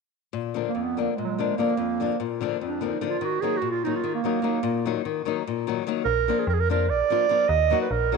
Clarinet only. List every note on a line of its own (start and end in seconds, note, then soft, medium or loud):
0.68 0.84 A#3 medium
0.83 0.99 B3 medium
1.00 1.11 A#3 medium
1.11 1.17 A#3 soft
1.16 1.26 G#3 medium
1.24 1.28 F#3 medium
1.24 1.34 G#3 medium
1.32 1.38 F#3 medium
1.32 1.58 G#3 medium
1.57 2.20 A#3 medium
2.67 2.87 D4 medium
2.88 3.06 D#4 medium
3.09 3.27 F4 medium
3.25 3.43 F#4 medium
3.41 3.59 G#4 medium
3.58 3.70 F#4 medium
3.71 3.85 F4 medium
3.84 3.97 D#4 medium
3.96 4.14 F4 medium
4.15 4.98 A#3 medium
6.05 6.41 A#4 medium
6.39 6.48 G#4 medium
6.49 6.55 A#4 medium
6.54 6.62 G#4 medium
6.60 6.71 A#4 loud
6.71 6.91 A#4 medium
6.89 7.50 D5 loud
7.49 7.81 D#5 loud
7.81 7.93 B4 medium
7.91 8.16 A#4 medium